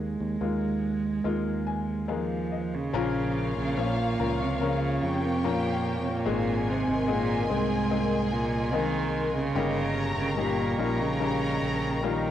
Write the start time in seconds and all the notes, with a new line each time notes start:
Already playing: D#2 D#3 G#3 A#3 D#4 G#4
0.20 D#2
0.41 D#2 G#3 A#3 D#4 F4
1.24 D#2 G#3 A#3 D#4 F4
1.67 G#5
2.08 F3 G#3 A#3 D#4 G#4 F5
2.52 D#5
2.74 C#3
2.93 A#1 A#2 F3 A#3 C#4 F4 A#4 C#5 F5 C#6
3.57 A#1 C#3
3.77 A#2 F3 A#3 C#4 F4 C#5
4.19 C#2 F3 A#3 C#4 F4 A#4
4.41 C3
4.60 C#3 F3 A#3 C#4 F4 A#4
5.02 F2 G4 G5
5.25 C3
5.44 A#2 F3 A#3 C#4 F4 A#4
6.01 C3
6.09 A#2
6.26 G#1 G#2 G#3 A#3 C4 D#4 G#4 D#5 G#5 C6
6.70 C3
6.88 G#1
7.08 A#2 G#3 A#3 C4 D#4 G#4
7.49 C2 G#2 G#3 A#3 C4 D#4 G#4
7.91 G#3 A#3 C4 D#4 G#4
8.32 A#2
8.73 D#3 G#3 A#3 C4 D#4 G#4
9.35 C#3
9.54 G1 G2 G3 A#3 C#4 D#4 G4 A#4 G5 A#5 C#6
10.17 G1 C#3
10.37 A#2 G3 A#3 C#4 D#4 G4
10.78 A#1 G3 A#3 C#4 D#4 F4 A#4 A#5
11.01 C#3
11.19 G3 A#3 C#4 D#4 A#4
11.62 A#1
12.03 D#3 G3 A#3 C#4 D#4 F4